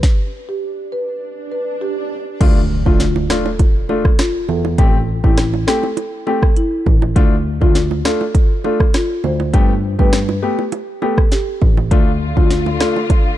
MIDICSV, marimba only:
0, 0, Header, 1, 2, 480
1, 0, Start_track
1, 0, Tempo, 594059
1, 26, Time_signature, 4, 2, 24, 8
1, 10808, End_track
2, 0, Start_track
2, 0, Title_t, "Marimba"
2, 0, Program_c, 0, 12
2, 394, Note_on_c, 0, 67, 75
2, 484, Note_off_c, 0, 67, 0
2, 745, Note_on_c, 0, 71, 79
2, 847, Note_off_c, 0, 71, 0
2, 1225, Note_on_c, 0, 71, 75
2, 1327, Note_off_c, 0, 71, 0
2, 1465, Note_on_c, 0, 67, 79
2, 1811, Note_off_c, 0, 67, 0
2, 2313, Note_on_c, 0, 65, 80
2, 2403, Note_off_c, 0, 65, 0
2, 2665, Note_on_c, 0, 69, 77
2, 2767, Note_off_c, 0, 69, 0
2, 3145, Note_on_c, 0, 69, 79
2, 3247, Note_off_c, 0, 69, 0
2, 3385, Note_on_c, 0, 65, 78
2, 3487, Note_off_c, 0, 65, 0
2, 3625, Note_on_c, 0, 69, 76
2, 3727, Note_off_c, 0, 69, 0
2, 4233, Note_on_c, 0, 64, 79
2, 4323, Note_off_c, 0, 64, 0
2, 4585, Note_on_c, 0, 69, 87
2, 4687, Note_off_c, 0, 69, 0
2, 5064, Note_on_c, 0, 69, 84
2, 5167, Note_off_c, 0, 69, 0
2, 5306, Note_on_c, 0, 64, 82
2, 5651, Note_off_c, 0, 64, 0
2, 6153, Note_on_c, 0, 65, 79
2, 6243, Note_off_c, 0, 65, 0
2, 6506, Note_on_c, 0, 69, 79
2, 6608, Note_off_c, 0, 69, 0
2, 6987, Note_on_c, 0, 69, 81
2, 7088, Note_off_c, 0, 69, 0
2, 7226, Note_on_c, 0, 65, 80
2, 7328, Note_off_c, 0, 65, 0
2, 7465, Note_on_c, 0, 72, 81
2, 7567, Note_off_c, 0, 72, 0
2, 8073, Note_on_c, 0, 71, 78
2, 8163, Note_off_c, 0, 71, 0
2, 8425, Note_on_c, 0, 67, 81
2, 8527, Note_off_c, 0, 67, 0
2, 8905, Note_on_c, 0, 69, 81
2, 9007, Note_off_c, 0, 69, 0
2, 9145, Note_on_c, 0, 67, 84
2, 9490, Note_off_c, 0, 67, 0
2, 9993, Note_on_c, 0, 65, 77
2, 10083, Note_off_c, 0, 65, 0
2, 10346, Note_on_c, 0, 69, 78
2, 10447, Note_off_c, 0, 69, 0
2, 10808, End_track
0, 0, End_of_file